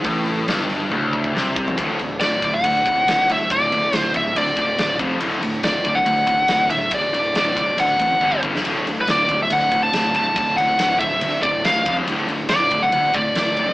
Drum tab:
RD |----------------|x-x-x-x-x-x-x-x-|x-x-x-x-x-x-x-x-|x-x-x-x-x-x-x-x-|
HH |o-o-o-o---------|----------------|----------------|----------------|
SD |----o-------o---|----o-------o---|----o-------o---|----o-------o---|
T1 |--------o-------|----------------|----------------|----------------|
FT |---------------o|----------------|----------------|----------------|
BD |o---------oo--o-|o-----o---o-----|o-----o---o---o-|------o---o-----|

RD |x-x-x-x-x-x-----|x-x-x-x-x-x-x-x-|x-x-x-x-x-x-x-x-|x-x-x-x-x-x-x-x-|
HH |----------------|----------------|----------------|----------------|
SD |----o----------o|----o-------o---|----o-------o---|----o-------o---|
T1 |----------------|----------------|----------------|----------------|
FT |----------------|----------------|----------------|----------------|
BD |o-----o---o-ooo-|------o---o-----|o-----o---o---o-|------o---o-----|